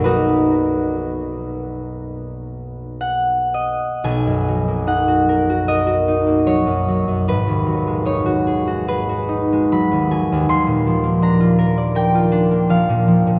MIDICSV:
0, 0, Header, 1, 2, 480
1, 0, Start_track
1, 0, Key_signature, 5, "major"
1, 0, Tempo, 958466
1, 16, Time_signature, 4, 2, 24, 8
1, 975, Tempo, 1045296
1, 1935, Tempo, 839161
1, 2415, Tempo, 795756
1, 4815, Tempo, 851064
1, 5295, Tempo, 750000
1, 7653, End_track
2, 0, Start_track
2, 0, Title_t, "Harp"
2, 0, Program_c, 0, 46
2, 0, Note_on_c, 0, 35, 43
2, 0, Note_on_c, 0, 54, 36
2, 0, Note_on_c, 0, 58, 36
2, 0, Note_on_c, 0, 70, 67
2, 20, Note_on_c, 0, 71, 64
2, 26, Note_on_c, 0, 66, 50
2, 29, Note_on_c, 0, 63, 50
2, 1462, Note_on_c, 0, 78, 60
2, 1674, Note_off_c, 0, 70, 0
2, 1707, Note_on_c, 0, 75, 53
2, 1801, Note_off_c, 0, 35, 0
2, 1823, Note_off_c, 0, 54, 0
2, 1845, Note_off_c, 0, 58, 0
2, 1890, Note_off_c, 0, 71, 0
2, 1896, Note_off_c, 0, 66, 0
2, 1898, Note_off_c, 0, 63, 0
2, 1936, Note_on_c, 0, 35, 50
2, 1939, Note_on_c, 0, 80, 71
2, 2062, Note_on_c, 0, 42, 35
2, 2191, Note_on_c, 0, 54, 40
2, 2301, Note_on_c, 0, 58, 36
2, 2408, Note_off_c, 0, 78, 0
2, 2410, Note_on_c, 0, 63, 38
2, 2415, Note_on_c, 0, 78, 58
2, 2537, Note_on_c, 0, 66, 43
2, 2663, Note_on_c, 0, 70, 39
2, 2757, Note_off_c, 0, 80, 0
2, 2781, Note_off_c, 0, 66, 0
2, 2789, Note_on_c, 0, 66, 42
2, 2892, Note_off_c, 0, 75, 0
2, 2893, Note_off_c, 0, 70, 0
2, 2899, Note_on_c, 0, 70, 42
2, 2900, Note_on_c, 0, 75, 69
2, 3005, Note_off_c, 0, 66, 0
2, 3012, Note_on_c, 0, 66, 43
2, 3133, Note_off_c, 0, 63, 0
2, 3141, Note_on_c, 0, 63, 42
2, 3247, Note_off_c, 0, 58, 0
2, 3254, Note_on_c, 0, 58, 35
2, 3367, Note_off_c, 0, 54, 0
2, 3372, Note_on_c, 0, 54, 36
2, 3375, Note_on_c, 0, 73, 64
2, 3488, Note_off_c, 0, 42, 0
2, 3495, Note_on_c, 0, 42, 38
2, 3618, Note_off_c, 0, 54, 0
2, 3625, Note_on_c, 0, 54, 40
2, 3735, Note_off_c, 0, 42, 0
2, 3742, Note_on_c, 0, 42, 37
2, 3864, Note_on_c, 0, 32, 51
2, 3868, Note_on_c, 0, 71, 69
2, 3871, Note_off_c, 0, 58, 0
2, 3871, Note_off_c, 0, 73, 0
2, 3873, Note_off_c, 0, 70, 0
2, 3875, Note_off_c, 0, 35, 0
2, 3877, Note_off_c, 0, 42, 0
2, 3981, Note_on_c, 0, 39, 36
2, 4089, Note_off_c, 0, 54, 0
2, 4096, Note_on_c, 0, 54, 38
2, 4222, Note_on_c, 0, 56, 38
2, 4326, Note_off_c, 0, 63, 0
2, 4331, Note_on_c, 0, 63, 41
2, 4336, Note_on_c, 0, 73, 61
2, 4447, Note_off_c, 0, 66, 0
2, 4454, Note_on_c, 0, 66, 45
2, 4582, Note_on_c, 0, 68, 43
2, 4699, Note_off_c, 0, 66, 0
2, 4706, Note_on_c, 0, 66, 44
2, 4767, Note_off_c, 0, 78, 0
2, 4823, Note_off_c, 0, 68, 0
2, 4823, Note_off_c, 0, 71, 0
2, 4829, Note_on_c, 0, 68, 43
2, 4831, Note_on_c, 0, 71, 72
2, 4941, Note_off_c, 0, 66, 0
2, 4948, Note_on_c, 0, 66, 42
2, 5052, Note_off_c, 0, 63, 0
2, 5058, Note_on_c, 0, 63, 43
2, 5156, Note_off_c, 0, 73, 0
2, 5186, Note_off_c, 0, 56, 0
2, 5193, Note_on_c, 0, 56, 38
2, 5224, Note_off_c, 0, 75, 0
2, 5297, Note_off_c, 0, 54, 0
2, 5303, Note_on_c, 0, 54, 41
2, 5305, Note_on_c, 0, 83, 68
2, 5421, Note_off_c, 0, 39, 0
2, 5428, Note_on_c, 0, 39, 39
2, 5547, Note_off_c, 0, 54, 0
2, 5553, Note_on_c, 0, 54, 42
2, 5554, Note_on_c, 0, 80, 68
2, 5682, Note_off_c, 0, 39, 0
2, 5689, Note_on_c, 0, 39, 43
2, 5790, Note_off_c, 0, 39, 0
2, 5796, Note_on_c, 0, 39, 51
2, 5798, Note_on_c, 0, 84, 85
2, 5806, Note_off_c, 0, 80, 0
2, 5806, Note_off_c, 0, 83, 0
2, 5807, Note_off_c, 0, 54, 0
2, 5808, Note_off_c, 0, 32, 0
2, 5810, Note_off_c, 0, 56, 0
2, 5810, Note_off_c, 0, 68, 0
2, 5810, Note_off_c, 0, 71, 0
2, 5811, Note_off_c, 0, 66, 0
2, 5911, Note_on_c, 0, 46, 35
2, 6038, Note_on_c, 0, 53, 41
2, 6146, Note_on_c, 0, 58, 41
2, 6265, Note_on_c, 0, 62, 43
2, 6270, Note_on_c, 0, 82, 62
2, 6382, Note_on_c, 0, 65, 43
2, 6498, Note_on_c, 0, 70, 47
2, 6593, Note_off_c, 0, 84, 0
2, 6620, Note_on_c, 0, 74, 47
2, 6725, Note_off_c, 0, 70, 0
2, 6731, Note_on_c, 0, 70, 45
2, 6737, Note_on_c, 0, 79, 79
2, 6852, Note_off_c, 0, 65, 0
2, 6860, Note_on_c, 0, 65, 46
2, 6958, Note_off_c, 0, 62, 0
2, 6966, Note_on_c, 0, 62, 50
2, 7082, Note_off_c, 0, 58, 0
2, 7090, Note_on_c, 0, 58, 42
2, 7201, Note_off_c, 0, 53, 0
2, 7206, Note_on_c, 0, 53, 47
2, 7212, Note_on_c, 0, 77, 73
2, 7326, Note_off_c, 0, 46, 0
2, 7334, Note_on_c, 0, 46, 42
2, 7444, Note_off_c, 0, 53, 0
2, 7451, Note_on_c, 0, 53, 41
2, 7522, Note_off_c, 0, 63, 0
2, 7566, Note_off_c, 0, 46, 0
2, 7574, Note_on_c, 0, 46, 42
2, 7653, Note_off_c, 0, 39, 0
2, 7653, Note_off_c, 0, 46, 0
2, 7653, Note_off_c, 0, 53, 0
2, 7653, Note_off_c, 0, 58, 0
2, 7653, Note_off_c, 0, 62, 0
2, 7653, Note_off_c, 0, 65, 0
2, 7653, Note_off_c, 0, 70, 0
2, 7653, Note_off_c, 0, 74, 0
2, 7653, Note_off_c, 0, 77, 0
2, 7653, Note_off_c, 0, 79, 0
2, 7653, Note_off_c, 0, 82, 0
2, 7653, End_track
0, 0, End_of_file